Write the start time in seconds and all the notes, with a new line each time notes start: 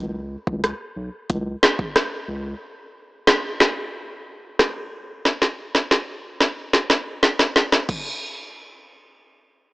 Already playing: C#2
0.47 C#2, kick
0.64 cross-stick, closed hi-hat
0.96 B1
1.30 C#2, kick, closed hi-hat
1.63 cross-stick, snare
1.79 kick
1.96 cross-stick, snare, closed hi-hat
2.28 C#2
3.27 cross-stick, snare
3.60 cross-stick, snare
4.59 cross-stick, snare
5.25 snare
5.42 snare
5.75 snare
5.91 snare
6.41 snare
6.73 snare
6.90 snare
7.23 snare
7.39 snare
7.56 snare
7.72 snare
7.89 kick, crash